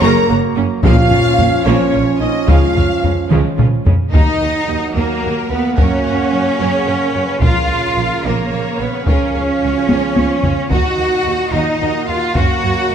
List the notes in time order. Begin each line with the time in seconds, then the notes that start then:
Already playing: F#3 A#3
0.00 F#1 F#2 C#3 A#3 A#4 A#5
0.28 F#1 F#2 A#3 F#4
0.56 F#1 F#2 F#3 C#4
0.83 A#1 A#2 F3 A#3 C#4 F4 F5, taiko
1.10 A#1 A#2 C#4 F4, taiko low
1.38 A#1 A#2 A#3 C#4, taiko low
1.64 A#1 A#2 F3 A#3 C#4 C#5
1.92 A#1 A#2 C#4 F4
2.20 A#1 A#2 A#3 C#4 D#4 D#5
2.48 C#2 C#3 F3 G#3 F4 F5, taiko
2.75 C#2 C#3 C#4 F4, taiko low
3.03 C#2 C#3 G#3 C#4, taiko low
3.30 C#2 C#3 F3 G#3, taiko mid
3.58 C#2 C#3 C#4 F4, taiko low-mid
3.86 C#2 C#3 G#3 C#4, taiko low
4.13 D#2 F#3 A#3 D#4 F#4 A#4 D#5 F#5, taiko
4.40 D#2 F#4 A#4
4.67 D#2 D#4 F#4
4.95 D#2 A#3 D#4 A#4
5.22 D#2 F#4 A#4
5.50 D#2 B3 D#4 F#4 B4
5.76 F#2 C#3 C#4 F#4 A#4 C#5, taiko
6.05 F#2 A#4 F#5
6.32 F#2 F#4 C#5
6.59 F#2 C#4 G#4 A#4
6.86 F#2 A#4 F#5
7.13 F#2 F#4 B4 C#5
7.41 A#1 A#3 F4 A#4 F5, taiko
7.68 A#1 F5
7.72 C#5
7.96 A#1 A#4 C#5
8.24 A#1 A#3 F4 A#4 C#5
8.51 A#1 C#5 F5
8.79 A#1 B3 A#4 B4 C#5
9.06 C#2 C#3 F3 C#4 F4 G#4 A#4 C#5, taiko
9.33 C#2 G#4 C#5 F5
9.61 C#2 F#4 G#4 C#5
9.89 C#2 F4 G#4, taiko high
10.16 C#2 C#5 F5, taiko high
10.43 C#2 G#4 C#5, taiko low
10.70 D#2 A#2 D#3 A#3 D#4 F#4 A#4 D#5 F#5, taiko
10.98 D#2 A#4 D#5
11.25 D#2 F#4 A#4
11.53 D#2 D#4 F#4 D#5
11.80 D#2 A#4 D#5
12.07 D#2 F4 F#4 A#4 F5
12.35 F#2 C#3 C#4 F#4 A#4 C#5 F#5, taiko
12.62 F#2 A#4 C#5
12.90 F#2 A#4 D#5